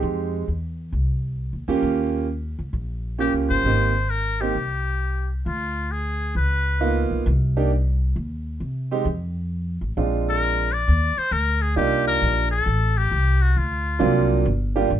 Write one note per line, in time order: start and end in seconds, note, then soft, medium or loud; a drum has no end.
0.00 0.44 F2 medium
0.00 0.45 G#3 medium
0.00 0.45 C4 medium
0.00 0.45 D#4 medium
0.00 0.45 G4 medium
0.48 0.90 E2 medium
0.93 1.49 C2 medium
1.53 1.67 D#2 medium
1.68 1.82 E2 medium
1.68 2.26 A#3 medium
1.68 2.25 C#4 medium
1.68 2.26 F4 medium
1.68 2.26 G4 medium
1.82 2.54 D#2 medium
2.59 2.72 C#2 medium
2.73 3.30 A#1 medium
3.18 3.63 A#3 medium
3.18 3.64 C#4 medium
3.18 3.64 F4 soft
3.18 3.64 G4 medium
3.18 3.33 G4 medium
3.33 3.48 C#2 medium
3.49 3.63 G1 medium
3.49 4.12 C5 loud
3.64 4.50 G#1 medium
3.64 3.91 A#3 medium
3.64 3.92 C4 medium
3.64 3.92 D#4 medium
3.64 3.92 G4 medium
4.10 4.43 A#4 medium
4.41 4.54 A#3 medium
4.41 4.54 C4 medium
4.41 4.54 D#4 medium
4.41 5.31 G4 medium
4.41 4.54 G4 medium
4.55 5.41 C2 medium
5.46 6.32 D2 medium
5.46 5.93 F4 medium
5.92 6.36 G#4 medium
6.35 7.06 C#2 medium
6.35 7.07 B4 medium
6.80 7.26 A#3 medium
6.80 7.26 B3 medium
6.80 7.26 D#4 medium
6.80 7.26 F4 medium
7.10 7.25 B1 medium
7.26 8.12 C2 loud
7.57 7.70 A#3 medium
7.57 7.70 D4 medium
7.57 7.70 D#4 medium
7.57 7.70 G4 medium
8.16 8.58 D#2 medium
8.60 9.03 C3 medium
8.91 9.05 G#3 medium
8.91 9.05 C4 medium
8.91 9.05 D#4 medium
8.91 9.05 G4 medium
9.05 9.77 F2 medium
9.81 9.95 A1 medium
9.97 10.83 A#1 medium
9.97 10.66 G#3 soft
9.97 10.66 C4 soft
9.97 10.65 D4 soft
9.97 10.66 F4 medium
10.30 10.75 A#4 loud
10.74 11.20 D5 medium
10.88 11.15 D#2 medium
11.17 11.34 C5 loud
11.17 muted upright bass stroke soft
11.31 11.75 D2 medium
11.31 11.63 A#4 loud
11.62 11.77 G#4 medium
11.76 12.20 C2 medium
11.76 12.45 G3 medium
11.76 12.45 A#3 medium
11.76 12.45 D4 medium
11.76 12.45 D#4 medium
11.76 12.45 F4 medium
11.76 12.04 G4 medium
12.07 12.48 A#4 loud
12.22 12.65 A#1 medium
12.51 12.99 A4 medium
12.66 13.09 A1 medium
12.97 13.43 G4 loud
13.11 13.55 C2 medium
13.42 13.59 F#4 medium
13.56 13.99 D2 medium
13.56 14.31 F4 medium
13.99 14.44 C2 medium
13.99 14.44 F#3 medium
13.99 14.45 A#3 medium
13.99 14.45 C4 medium
13.99 14.45 D4 medium
13.99 14.45 F4 medium
14.46 14.89 G1 medium
14.76 14.89 G3 medium
14.76 14.89 A#3 medium
14.76 14.89 D4 medium
14.76 14.89 F4 medium
14.76 14.89 G4 medium
14.90 15.00 G#1 medium